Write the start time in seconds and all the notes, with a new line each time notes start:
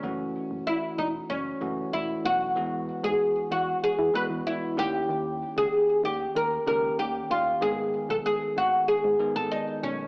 Already playing: C#4
0.03 F#1 E3 A3 C#4 F#4
0.51 F#1
0.67 E4
0.98 E1 D#4
1.30 F#1 C#4
1.61 F#1 E3 A3 C#4 F#4
1.93 E1 E4
2.25 B1 F#4
2.56 E2 E3 G#3 B3 F#4
3.04 G#2 G#4
3.51 E2 F#4
3.83 E3 G#4
3.99 E3
4.14 E3 G#3 B3 F#4 B4
4.30 E2
4.47 E4
4.77 D#2 D#3 A#3 C#4 G4
5.09 D#2
5.57 C#2 G#4
6.04 D#2 G4
6.35 D#2 A#4
6.66 C#2 D#3 A#3 C#4 G4 A#4
6.99 D#2 G4
7.30 D#2 F4
7.61 G#1 D#3 G#3 B3 G#4
8.09 B1 A4
8.26 G#4
8.57 G#1 F#4
8.88 G#2 G#4
9.04 G#2
9.19 D#3 G#3 B3 G#4
9.36 G#1 A4
9.52 D#4
9.83 B1 C#4